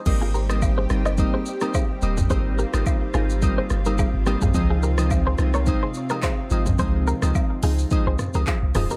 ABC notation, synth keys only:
X:1
M:4/4
L:1/16
Q:"Swing 16ths" 1/4=107
K:Ab
V:1 name="Synth keys"
[G,B,CE]3 [G,B,CE]3 [G,B,CE]2 [G,B,CE] z2 [G,B,CE] z2 [G,B,CE] z | [G,B,CE]3 [G,B,CE]3 [G,B,CE]2 [G,B,CE] z2 [G,B,CE] z2 [G,B,CE] z | [F,A,CE]3 [F,A,CE]3 [F,A,CE]2 [F,A,CE] z2 [F,A,CE] z2 [F,A,CE] z | [F,A,CE]3 [F,A,CE]3 [F,A,CE]2 [F,A,CE] z2 [F,A,CE] z2 [F,A,CE] z |]